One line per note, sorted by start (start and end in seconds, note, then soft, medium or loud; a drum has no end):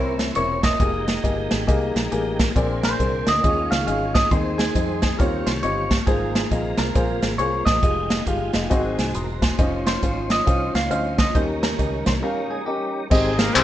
0.00 0.29 C2 medium
0.00 0.60 C3 medium
0.00 0.78 A#3 medium
0.00 0.24 C4 medium
0.00 0.78 C#4 medium
0.00 0.24 E4 medium
0.00 0.78 E4 medium
0.00 0.16 A#4 medium
0.00 0.24 A#4 medium
0.00 0.78 C5 medium
0.00 0.24 C#5 medium
0.19 snare medium
0.19 closed hi-hat medium
0.35 0.74 E1 medium
0.35 0.68 C4 medium
0.35 0.68 E4 medium
0.35 0.68 A#4 medium
0.35 0.64 C#5 medium
0.35 0.68 C#5 medium
0.35 closed hi-hat medium
0.63 1.20 D#5 loud
0.63 kick medium
0.63 snare loud
0.63 closed hi-hat medium
0.80 1.17 F1 medium
0.80 2.52 G#3 medium
0.80 1.12 A#3 medium
0.80 2.52 D#4 medium
0.80 2.52 G4 medium
0.80 1.12 G4 medium
0.80 1.12 G#4 medium
0.80 2.52 A#4 medium
0.80 1.12 D#5 medium
0.80 kick loud
0.80 closed hi-hat medium
1.08 snare medium
1.08 closed hi-hat medium
1.23 1.47 G1 medium
1.23 1.56 A#3 medium
1.23 1.55 G4 medium
1.23 1.56 G#4 medium
1.23 1.56 D#5 medium
1.23 kick medium
1.23 closed hi-hat medium
1.51 1.66 G#1 medium
1.51 snare medium
1.51 closed hi-hat medium
1.67 1.92 C2 medium
1.67 1.99 A#3 medium
1.67 1.99 G4 medium
1.67 2.00 G#4 medium
1.67 2.00 D#5 medium
1.67 kick medium
1.67 closed hi-hat medium
1.96 2.10 A#1 medium
1.96 snare medium
1.96 closed hi-hat medium
2.11 2.50 A1 medium
2.11 2.43 A#3 medium
2.11 2.43 G4 medium
2.11 2.43 G#4 medium
2.11 2.44 A#4 medium
2.11 closed hi-hat medium
2.39 kick medium
2.39 snare loud
2.39 closed hi-hat medium
2.56 2.93 A#1 loud
2.56 3.23 A#2 medium
2.56 3.42 A#3 medium
2.56 2.87 C4 medium
2.56 3.43 D4 medium
2.56 2.88 G#4 medium
2.56 3.43 G#4 medium
2.56 2.88 A#4 medium
2.56 3.42 C5 medium
2.56 2.88 D5 medium
2.56 kick loud
2.56 closed hi-hat medium
2.83 3.28 C5 loud
2.83 snare loud
2.83 closed hi-hat medium
2.99 3.23 C2 medium
2.99 3.31 C4 medium
2.99 3.31 G#4 medium
2.99 3.31 A#4 medium
2.99 3.31 C5 medium
2.99 kick medium
2.99 closed hi-hat medium
3.26 3.42 D2 medium
3.26 3.69 D#5 medium
3.26 snare loud
3.26 closed hi-hat medium
3.43 3.68 D#2 medium
3.43 4.11 D#3 medium
3.43 4.30 G#3 medium
3.43 3.75 C#4 medium
3.43 4.30 D#4 medium
3.43 3.75 F4 medium
3.43 4.30 F4 medium
3.43 3.76 G#4 medium
3.43 4.30 C#5 medium
3.43 3.76 D#5 medium
3.43 kick loud
3.43 closed hi-hat medium
3.71 3.85 C#2 medium
3.71 3.86 F5 medium
3.71 snare medium
3.71 closed hi-hat medium
3.87 4.25 G#1 medium
3.87 4.19 C#4 medium
3.87 4.19 F4 medium
3.87 4.19 G#4 medium
3.87 4.19 D#5 medium
3.87 4.13 F5 medium
3.87 closed hi-hat medium
4.15 4.31 D#5 medium
4.15 kick loud
4.15 snare loud
4.15 closed hi-hat medium
4.31 4.69 D#2 loud
4.31 4.99 D#3 medium
4.31 5.18 G#3 medium
4.31 4.63 C4 medium
4.31 5.18 C4 medium
4.31 5.18 D#4 medium
4.31 4.63 D#4 medium
4.31 4.63 G#4 medium
4.31 4.57 C5 medium
4.31 5.18 C5 medium
4.31 4.63 D#5 medium
4.31 kick loud
4.31 closed hi-hat medium
4.58 4.99 G#4 medium
4.58 snare loud
4.58 closed hi-hat medium
4.75 5.13 F2 medium
4.75 5.07 C4 medium
4.75 5.07 D#4 soft
4.75 5.07 G#4 medium
4.75 5.07 D#5 medium
4.75 kick medium
4.75 closed hi-hat medium
5.02 5.18 G#4 medium
5.02 kick medium
5.02 snare medium
5.02 closed hi-hat medium
5.19 5.43 D#2 medium
5.19 5.87 D#3 medium
5.19 5.26 F3 soft
5.19 5.51 C4 medium
5.19 6.06 C#4 medium
5.19 5.51 F4 medium
5.19 6.06 F4 medium
5.19 5.51 G4 medium
5.19 5.47 A#4 medium
5.19 6.06 C#5 medium
5.19 5.52 C#5 medium
5.19 kick loud
5.19 closed hi-hat medium
5.25 6.09 G3 medium
5.46 5.61 C2 medium
5.46 5.51 C5 medium
5.46 snare medium
5.46 closed hi-hat medium
5.63 6.01 G1 medium
5.63 5.95 C4 medium
5.63 5.95 F4 medium
5.63 5.95 G4 medium
5.63 5.96 C#5 medium
5.63 5.95 D#5 medium
5.63 closed hi-hat medium
5.91 kick medium
5.91 snare loud
5.91 closed hi-hat medium
6.07 6.45 G#1 medium
6.07 6.75 G#2 medium
6.07 7.80 G#3 medium
6.07 6.39 A#3 medium
6.07 7.80 C4 medium
6.07 6.39 F4 medium
6.07 7.80 F4 soft
6.07 6.48 G#4 medium
6.07 6.39 G#4 medium
6.07 7.80 A#4 medium
6.07 6.39 C5 medium
6.07 kick loud
6.07 closed hi-hat medium
6.35 snare medium
6.35 closed hi-hat medium
6.51 6.75 A#1 medium
6.51 6.83 A#3 medium
6.51 6.83 F4 medium
6.51 6.83 G#4 medium
6.51 6.83 D#5 medium
6.51 kick medium
6.51 closed hi-hat medium
6.77 6.93 C2 medium
6.77 7.19 A#4 medium
6.77 snare loud
6.77 closed hi-hat medium
6.95 7.19 A#1 medium
6.95 7.27 A#3 medium
6.95 7.27 F4 medium
6.95 7.27 G#4 medium
6.95 7.27 C5 medium
6.95 kick loud
6.95 closed hi-hat medium
7.22 7.37 G#1 medium
7.22 snare medium
7.22 closed hi-hat medium
7.38 7.62 C2 medium
7.38 7.71 A#3 medium
7.38 7.71 F4 medium
7.38 7.71 G#4 medium
7.38 7.71 C5 medium
7.38 7.64 C#5 medium
7.38 closed hi-hat medium
7.65 7.81 A#1 medium
7.65 8.22 D#5 medium
7.65 kick loud
7.65 snare loud
7.65 closed hi-hat medium
7.82 8.20 F1 medium
7.82 8.15 G#3 medium
7.82 8.69 D#4 medium
7.82 8.69 F4 medium
7.82 8.15 F4 medium
7.82 8.69 G4 medium
7.82 8.15 G4 medium
7.82 8.69 G#4 medium
7.82 8.15 D#5 medium
7.82 kick loud
7.82 closed hi-hat medium
8.10 snare loud
8.10 closed hi-hat medium
8.27 8.50 G1 medium
8.27 8.58 G#3 medium
8.27 8.59 F4 medium
8.27 8.59 G4 medium
8.27 8.59 F5 medium
8.27 kick medium
8.27 closed hi-hat medium
8.53 8.69 F1 medium
8.53 8.62 D#5 medium
8.53 snare medium
8.53 closed hi-hat medium
8.62 8.70 F5 medium
8.70 8.95 G#1 medium
8.70 9.38 G#2 medium
8.70 9.58 F#3 medium
8.70 9.02 C4 medium
8.70 9.58 C4 medium
8.70 9.14 D#4 medium
8.70 9.02 F#4 medium
8.70 9.02 G#4 medium
8.70 9.14 G#4 medium
8.70 9.02 D#5 medium
8.70 8.96 F#5 medium
8.70 kick loud
8.70 closed hi-hat medium
8.98 9.13 C2 medium
8.98 9.14 G#5 medium
8.98 snare medium
8.98 closed hi-hat medium
9.14 9.52 E1 medium
9.14 9.41 A#4 medium
9.14 9.40 C6 medium
9.14 9.41 D#6 medium
9.14 closed hi-hat medium
9.42 9.58 D#4 medium
9.42 9.58 C5 medium
9.42 9.84 G#5 medium
9.42 9.58 C6 medium
9.42 kick medium
9.42 snare loud
9.42 closed hi-hat medium
9.59 9.96 F1 medium
9.59 9.66 D#3 medium
9.59 9.91 C#4 medium
9.59 11.32 C#4 medium
9.59 11.32 D#4 medium
9.59 9.91 F4 medium
9.59 9.91 C5 medium
9.59 11.32 C5 medium
9.59 9.91 D#5 medium
9.59 kick loud
9.59 closed hi-hat medium
9.64 11.34 F3 medium
9.86 10.31 C5 loud
9.86 snare loud
9.86 closed hi-hat medium
10.03 10.40 G#1 medium
10.03 10.35 C#4 medium
10.03 10.35 F4 medium
10.03 10.35 C5 soft
10.03 10.35 F5 medium
10.03 kick medium
10.03 closed hi-hat medium
10.30 10.75 D#5 medium
10.30 snare loud
10.30 closed hi-hat medium
10.46 10.71 C2 medium
10.46 10.78 C#4 medium
10.46 10.78 F4 medium
10.46 10.79 C5 medium
10.46 10.79 F5 medium
10.46 kick loud
10.46 closed hi-hat medium
10.75 10.89 C#2 medium
10.75 10.90 F5 medium
10.75 snare medium
10.75 closed hi-hat medium
10.90 11.29 D2 medium
10.90 11.22 C#4 medium
10.90 11.23 F4 medium
10.90 11.23 C5 medium
10.90 11.23 D#5 medium
10.90 11.18 F5 medium
10.90 closed hi-hat medium
11.18 11.36 D#5 medium
11.18 kick medium
11.18 snare loud
11.18 closed hi-hat medium
11.35 11.73 D#2 medium
11.35 12.03 D#3 medium
11.35 13.08 G3 medium
11.35 11.67 C#4 medium
11.35 13.08 C#4 medium
11.35 13.08 D#4 medium
11.35 11.67 G4 medium
11.35 13.08 A#4 medium
11.35 11.67 A#4 medium
11.35 11.42 C5 medium
11.35 11.67 D#5 medium
11.35 kick loud
11.35 closed hi-hat medium
11.63 12.04 A#4 medium
11.63 snare loud
11.63 closed hi-hat medium
11.78 12.03 C#2 medium
11.78 12.10 C#4 medium
11.78 12.11 G4 medium
11.78 12.11 A#4 medium
11.78 12.11 D#5 medium
11.78 kick medium
11.78 closed hi-hat medium
12.06 12.21 C2 medium
12.06 12.12 C5 medium
12.06 kick medium
12.06 snare loud
12.06 closed hi-hat medium
12.23 12.55 C#4 medium
12.23 12.55 G4 medium
12.23 12.50 A#4 medium
12.23 12.55 A#4 medium
12.23 12.55 F5 medium
12.50 12.66 G#4 medium
12.66 12.99 C#4 medium
12.66 13.00 G4 medium
12.66 12.99 G4 medium
12.66 12.99 A#4 medium
12.66 12.99 D#5 medium
13.10 13.49 G#1 loud
13.10 13.64 G#2 medium
13.10 13.36 G#3 medium
13.10 13.64 G#3 medium
13.10 13.43 C4 medium
13.10 13.55 C4 medium
13.10 13.64 C4 medium
13.10 13.64 D#4 medium
13.10 13.43 G4 medium
13.10 13.64 G4 medium
13.10 13.36 G#4 medium
13.10 13.43 G#4 medium
13.10 13.43 D#5 loud
13.10 kick loud
13.10 crash medium
13.10 tambourine medium
13.38 13.55 A#3 medium
13.38 13.55 A#4 medium
13.38 snare loud
13.38 closed hi-hat medium
13.38 tambourine medium
13.54 13.64 C2 medium
13.54 13.64 C4 medium
13.54 13.64 G4 medium
13.54 13.64 G#4 medium
13.54 13.64 C5 medium
13.54 clap loud
13.54 closed hi-hat medium
13.54 tambourine medium